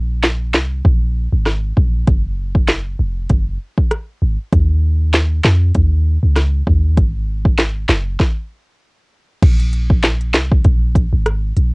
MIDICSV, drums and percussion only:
0, 0, Header, 1, 2, 480
1, 0, Start_track
1, 0, Tempo, 612245
1, 1627, Time_signature, 4, 2, 24, 8
1, 9204, End_track
2, 0, Start_track
2, 0, Title_t, "Drums"
2, 185, Note_on_c, 9, 38, 116
2, 185, Note_on_c, 9, 39, 95
2, 263, Note_off_c, 9, 39, 0
2, 264, Note_off_c, 9, 38, 0
2, 426, Note_on_c, 9, 38, 117
2, 426, Note_on_c, 9, 39, 93
2, 504, Note_off_c, 9, 39, 0
2, 505, Note_off_c, 9, 38, 0
2, 666, Note_on_c, 9, 36, 91
2, 745, Note_off_c, 9, 36, 0
2, 1146, Note_on_c, 9, 37, 100
2, 1146, Note_on_c, 9, 38, 72
2, 1224, Note_off_c, 9, 37, 0
2, 1224, Note_off_c, 9, 38, 0
2, 1387, Note_on_c, 9, 36, 81
2, 1466, Note_off_c, 9, 36, 0
2, 1625, Note_on_c, 9, 42, 69
2, 1626, Note_on_c, 9, 36, 116
2, 1704, Note_off_c, 9, 36, 0
2, 1704, Note_off_c, 9, 42, 0
2, 2000, Note_on_c, 9, 36, 101
2, 2078, Note_off_c, 9, 36, 0
2, 2104, Note_on_c, 9, 42, 82
2, 2105, Note_on_c, 9, 39, 94
2, 2106, Note_on_c, 9, 38, 119
2, 2182, Note_off_c, 9, 42, 0
2, 2184, Note_off_c, 9, 38, 0
2, 2184, Note_off_c, 9, 39, 0
2, 2584, Note_on_c, 9, 42, 73
2, 2587, Note_on_c, 9, 36, 88
2, 2662, Note_off_c, 9, 42, 0
2, 2665, Note_off_c, 9, 36, 0
2, 2961, Note_on_c, 9, 36, 94
2, 3039, Note_off_c, 9, 36, 0
2, 3066, Note_on_c, 9, 37, 101
2, 3067, Note_on_c, 9, 42, 81
2, 3144, Note_off_c, 9, 37, 0
2, 3145, Note_off_c, 9, 42, 0
2, 3548, Note_on_c, 9, 36, 116
2, 3548, Note_on_c, 9, 42, 71
2, 3626, Note_off_c, 9, 36, 0
2, 3626, Note_off_c, 9, 42, 0
2, 4026, Note_on_c, 9, 42, 81
2, 4028, Note_on_c, 9, 38, 115
2, 4028, Note_on_c, 9, 39, 89
2, 4105, Note_off_c, 9, 42, 0
2, 4106, Note_off_c, 9, 39, 0
2, 4107, Note_off_c, 9, 38, 0
2, 4268, Note_on_c, 9, 38, 121
2, 4268, Note_on_c, 9, 39, 98
2, 4346, Note_off_c, 9, 39, 0
2, 4347, Note_off_c, 9, 38, 0
2, 4505, Note_on_c, 9, 42, 76
2, 4509, Note_on_c, 9, 36, 88
2, 4583, Note_off_c, 9, 42, 0
2, 4587, Note_off_c, 9, 36, 0
2, 4987, Note_on_c, 9, 37, 97
2, 4987, Note_on_c, 9, 38, 72
2, 4988, Note_on_c, 9, 42, 77
2, 5066, Note_off_c, 9, 37, 0
2, 5066, Note_off_c, 9, 38, 0
2, 5067, Note_off_c, 9, 42, 0
2, 5230, Note_on_c, 9, 36, 83
2, 5308, Note_off_c, 9, 36, 0
2, 5468, Note_on_c, 9, 36, 117
2, 5468, Note_on_c, 9, 42, 72
2, 5546, Note_off_c, 9, 42, 0
2, 5547, Note_off_c, 9, 36, 0
2, 5842, Note_on_c, 9, 36, 98
2, 5921, Note_off_c, 9, 36, 0
2, 5947, Note_on_c, 9, 42, 86
2, 5948, Note_on_c, 9, 39, 99
2, 5949, Note_on_c, 9, 37, 73
2, 5949, Note_on_c, 9, 38, 120
2, 6025, Note_off_c, 9, 42, 0
2, 6027, Note_off_c, 9, 37, 0
2, 6027, Note_off_c, 9, 38, 0
2, 6027, Note_off_c, 9, 39, 0
2, 6187, Note_on_c, 9, 39, 96
2, 6188, Note_on_c, 9, 38, 119
2, 6266, Note_off_c, 9, 38, 0
2, 6266, Note_off_c, 9, 39, 0
2, 6427, Note_on_c, 9, 38, 89
2, 6428, Note_on_c, 9, 36, 103
2, 6505, Note_off_c, 9, 38, 0
2, 6506, Note_off_c, 9, 36, 0
2, 7388, Note_on_c, 9, 36, 121
2, 7388, Note_on_c, 9, 42, 74
2, 7388, Note_on_c, 9, 49, 98
2, 7466, Note_off_c, 9, 36, 0
2, 7467, Note_off_c, 9, 42, 0
2, 7467, Note_off_c, 9, 49, 0
2, 7523, Note_on_c, 9, 42, 61
2, 7601, Note_off_c, 9, 42, 0
2, 7627, Note_on_c, 9, 42, 87
2, 7706, Note_off_c, 9, 42, 0
2, 7762, Note_on_c, 9, 36, 102
2, 7840, Note_off_c, 9, 36, 0
2, 7866, Note_on_c, 9, 42, 89
2, 7868, Note_on_c, 9, 38, 119
2, 7868, Note_on_c, 9, 39, 96
2, 7945, Note_off_c, 9, 42, 0
2, 7946, Note_off_c, 9, 39, 0
2, 7947, Note_off_c, 9, 38, 0
2, 8003, Note_on_c, 9, 42, 53
2, 8081, Note_off_c, 9, 42, 0
2, 8107, Note_on_c, 9, 38, 118
2, 8107, Note_on_c, 9, 39, 96
2, 8108, Note_on_c, 9, 42, 76
2, 8185, Note_off_c, 9, 39, 0
2, 8186, Note_off_c, 9, 38, 0
2, 8186, Note_off_c, 9, 42, 0
2, 8244, Note_on_c, 9, 36, 104
2, 8322, Note_off_c, 9, 36, 0
2, 8345, Note_on_c, 9, 42, 77
2, 8348, Note_on_c, 9, 36, 93
2, 8423, Note_off_c, 9, 42, 0
2, 8426, Note_off_c, 9, 36, 0
2, 8586, Note_on_c, 9, 36, 98
2, 8590, Note_on_c, 9, 42, 77
2, 8665, Note_off_c, 9, 36, 0
2, 8668, Note_off_c, 9, 42, 0
2, 8827, Note_on_c, 9, 37, 105
2, 8827, Note_on_c, 9, 42, 78
2, 8905, Note_off_c, 9, 37, 0
2, 8906, Note_off_c, 9, 42, 0
2, 9067, Note_on_c, 9, 42, 70
2, 9145, Note_off_c, 9, 42, 0
2, 9204, End_track
0, 0, End_of_file